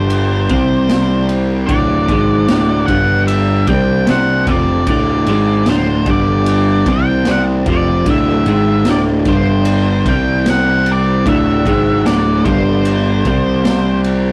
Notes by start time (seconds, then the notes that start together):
Already playing: G1 G2 D3 G3 D4 G4 C5
0.10 ride
0.48 C2 C3 G3 C4, kick, ride
0.89 snare, ride
1.29 ride
1.67 D1 D2 A2 D3 F#3 D4 F#4 D5, kick, ride
2.08 G#1 G#2 D#3 G#3, kick, ride
2.48 D1 D2 A2 D3, snare, ride
2.86 G1 G2 D3 G3 D4 G4 F#5, kick, ride
3.27 E5, ride
3.67 C2 C3 G3 C4 G5, kick, ride
4.07 C2 C3 G3 C4 F#5, snare, ride
4.47 F1 F2 C3 F3 D5, kick, ride
4.87 D1 D2 A2 D3 D5, kick, ride
5.26 G#1 G#2 D#3 G#3, ride
5.66 D1 D2 A2 D3 C5, snare, ride
6.06 G1 G2 D3 G3 G4, kick, ride
6.10 D5
6.46 ride
6.86 C2 C3 G3 C4 D4, kick, ride
6.92 G5
7.25 C2 C3 G3 C4, snare, ride
7.31 F#5
7.66 F1 F2 C3 F3, kick, ride
7.72 D5
8.06 D1 D2 A2 D3, kick, ride
8.11 E5
8.45 G#1 G#2 D#3 G#3, ride
8.85 D1 D2 A2 D3, snare, ride
8.91 D5
9.25 G1 G2 D3 G3 G4 C5, kick, ride
9.65 ride
10.05 C2 C3 G3 C4 G5, kick, ride
10.46 snare, ride
10.50 F#5
10.86 ride
10.92 D5
11.24 D1 D2 A2 D3 F#3 D4 F#4, kick, ride
11.29 E5
11.65 G#1 G#2 D#3 G#3, kick, ride
12.06 D1 D2 A2 D3 D5, snare, ride
12.44 G1 G2 D3 G3 G4 C5, kick, ride
12.85 ride
13.25 C2 C3 G3 C4 G4, kick, ride
13.65 snare, ride
14.04 ride